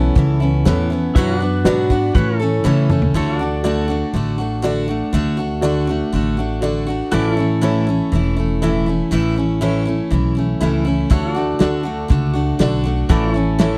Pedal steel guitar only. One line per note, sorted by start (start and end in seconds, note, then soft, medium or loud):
0.00 1.14 E4 medium
0.00 1.14 A4 medium
0.00 1.14 C#5 medium
1.15 1.40 E4 medium
1.15 2.14 B4 medium
1.15 1.37 C#5 medium
1.37 2.14 F#4 medium
1.37 2.15 D5 medium
2.15 2.40 F#4 medium
2.15 2.41 B4 medium
2.15 3.14 C#5 medium
2.40 3.13 E4 medium
2.40 3.14 A4 medium
3.15 3.40 E4 medium
3.15 7.10 A4 medium
3.15 3.37 C#5 medium
3.37 7.09 F#4 medium
3.37 7.10 D5 medium
7.12 7.37 F#4 medium
7.12 11.07 A4 medium
7.12 7.34 D5 medium
7.34 11.07 E4 medium
7.34 11.08 C#5 medium
11.11 11.36 E4 medium
11.11 13.09 A4 medium
11.11 11.33 C#5 medium
11.33 13.08 F#4 medium
11.33 13.09 D5 medium
13.10 13.35 F#4 medium
13.10 13.78 A4 medium
13.10 13.32 D5 medium
13.32 13.78 E4 medium
13.32 13.78 C#5 medium